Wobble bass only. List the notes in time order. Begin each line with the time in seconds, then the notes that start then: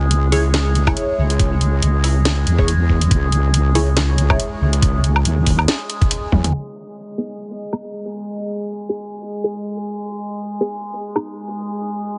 Already playing: C#2
1.18 C#2
1.82 C#2
2.47 E2
3.11 C#2
4.61 C#2
5.25 D#2
6.32 E2